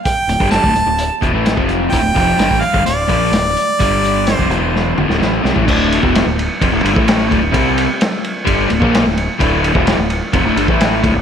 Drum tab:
CC |----------------|----------------|----------------|x---------------|
RD |----------------|----------------|----------------|--x-x-x-x-x-x-x-|
HH |x-x-x-x-x-x-x-x-|x-x-x-x-x-x-x-x-|x-x-x-x---------|----------------|
SD |----o-------o---|----o-------o---|----o---o--oo-o-|----o-------o---|
T2 |----------------|----------------|----------o-----|----------------|
BD |o--o-o----o--o--|o-o--o-o--o-----|o----o---------o|o--o----o--o--o-|

CC |----------------|----------------|
RD |x-x-x-x-x-x-x-x-|x-x-x-x-x-x-x-x-|
HH |----------------|----------------|
SD |----o-------oo--|----o-------o---|
T2 |----------------|----------------|
BD |o-------o--o----|o--o----o--o--o-|